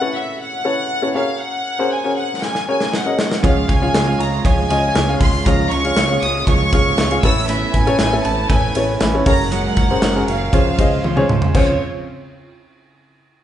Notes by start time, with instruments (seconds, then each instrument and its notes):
Already playing: upright piano A2 B4 C#5 E5, violin section F#5
0.00 upright piano C#4 E4 A4 B4 C#5
0.16 violin section E5
0.40 violin section F#5
0.64 upright piano C#4 E4 A4 B4 C#5
1.02 upright piano C#4 E4 A4 B4 C#5
1.15 upright piano C#4 F#4 G#4 A#4 C#5, violin section F5
1.42 violin section F#5
1.79 upright piano C#4 F#4 G#4 A#4 C5
1.93 violin section G#5
2.04 upright piano C#4 F#4 G#4 A#4 C#5
2.18 violin section F#5
2.42 violin section G#5, snare
2.55 snare
2.68 upright piano C#4 F#4 G#4 A#4 C#5, violin section G#5
2.81 snare
2.94 violin section F#5, snare
3.05 upright piano C#4 F#4 G#4 A#4 D#5
3.19 snare
3.32 snare
3.43 analog synth bass C#2, clean electric guitar C#3 F3 G#3 C#4 F4 C#5, upright piano C#3 C#4 F4 G#4 C#5 F5, analog synth pad C#3 G#3 F4, violin section F5, kick, ride
3.68 analog synth bass C#2, clean electric guitar G#3 C#4 F4 C#5, violin section G#5, kick, ride
3.81 upright piano C#4 F4 G#4 C#5 F5
3.94 analog synth bass C#2, clean electric guitar G#3 C#4 F4 C#5, snare, ride
4.06 upright piano C#4 F4 G#4 C#5 F5
4.19 analog synth bass C#2, clean electric guitar G#3 C#4 F4 C#5, violin section A#5, ride
4.45 analog synth bass C#2, clean electric guitar C#3 F3 G#3 C#4 F4 C#5, violin section G#5, kick, ride
4.70 analog synth bass C#2, clean electric guitar G#3 C#4 F4 C#5, upright piano C#4 F4 G#4 C#5 D#5, ride
4.95 analog synth bass C#2, clean electric guitar G#3 C#4 F4 C#5, snare, ride
5.07 upright piano C#4 F4 G#4 C#5 F5
5.20 analog synth bass C#2, clean electric guitar G#3 C#4 F4 C#5, violin section C6, kick, snare, open hi-hat, ride
5.45 analog synth bass C#2, clean electric guitar C#3 F3 G#3 C#4 F4 C#5, upright piano C#3 C#4 F4 G#4 C#5 F5, analog synth pad A#3, violin section A#5, kick, hi-hat pedal, ride
5.71 analog synth bass C#2, clean electric guitar G#3 C#4 F4 C#5, violin section C#6, ride
5.84 upright piano C#4 F4 G#4 C#5 F5, ride
5.96 analog synth bass C#2, clean electric guitar G#3 C#4 F4 C#5, snare, ride
6.09 upright piano C#4 F4 G#4 C#5 F5
6.22 analog synth bass C#2, clean electric guitar G#3 C#4 F4 C#5, violin section D#6, ride
6.47 analog synth bass C#2, clean electric guitar C#3 F3 G#3 C#4 F4 C#5, violin section C#6, kick, ride
6.72 analog synth bass C#2, clean electric guitar G#3 C#4 F4 C#5, upright piano C#4 F4 G#4 C#5 F5, kick, ride
6.98 analog synth bass C#2, clean electric guitar G#3 C#4 F4 C#5, snare, ride
7.10 upright piano C#4 F4 G#4 C#5 F5, ride
7.22 analog synth bass A1, upright piano A2 C#4 E4 A4 B4 C#5, analog synth pad B2 A3 C#4, clean electric guitar C#4 E4 B4, violin section E6, kick, open hi-hat, ride
7.49 clean electric guitar A3 C#4 E4 B4, violin section E5, hi-hat pedal, ride
7.74 analog synth bass A1, clean electric guitar C#4 E4 B4, violin section G#5, kick, ride
7.86 upright piano C#4 E4 A4 B4 C#5, ride
7.99 analog synth bass A1, clean electric guitar A3 C#4 E4 B4, snare, ride
8.12 upright piano C#4 E4 A4 B4 E5
8.24 analog synth bass A1, clean electric guitar C#4 E4 B4, violin section A5, ride
8.50 analog synth bass A1, clean electric guitar A3 C#4 E4 B4, violin section G#5, kick, ride
8.75 analog synth bass A1, upright piano C#4 E4 A4 B4 C#5, clean electric guitar C#4 E4 B4, ride
9.00 analog synth bass A1, clean electric guitar A3 C#4 E4 B4, snare, ride
9.14 upright piano C#4 E4 A4 B4 C#5
9.26 analog synth bass F#1, analog synth pad A#2 G#3 F#4, upright piano C#4 F#4 G#4 A#4 C#5, clean electric guitar C#4 F#4 A#4, violin section A#5, kick, snare, open hi-hat, ride
9.51 clean electric guitar F#3 G#3 C#4 F#4 A#4, violin section F#5, hi-hat pedal, ride
9.77 analog synth bass F#1, clean electric guitar C#4 F#4 A#4, kick, ride
9.90 upright piano C#4 F#4 G#4 A#4 C5
10.02 analog synth bass F#1, clean electric guitar G#3 C#4 F#4 A#4, snare, ride
10.15 upright piano C#4 F#4 G#4 A#4 C#5
10.27 analog synth bass F#1, clean electric guitar C#4 F#4 A#4, violin section F5, ride
10.53 analog synth bass C#2, analog synth pad C#3 C#4 F4, clean electric guitar C#3 F3 G#3 C#4 F4 C5, upright piano C#3 C#4 F4 G#4 C5 C#5, kick, ride
10.78 analog synth bass C#2, clean electric guitar G#3 C#4 F4 C5, upright piano C#4 F4 G#4 C5 D#5, kick, ride
11.04 analog synth bass C#2, clean electric guitar G#3 C#4 F4 C5, high tom
11.16 upright piano C#4 F4 G#4 C5 C#5, mid tom
11.29 analog synth bass C#2, clean electric guitar G#3 C#4 F4 C5, mid tom
11.42 floor tom
11.54 analog synth bass C#2, upright piano C#2 C#4 F4 G#4 C5, clean electric guitar C#3 F3 G#3 C#4 F4 C5, analog synth pad C#3 C4 F4, violin section C#5, kick, crash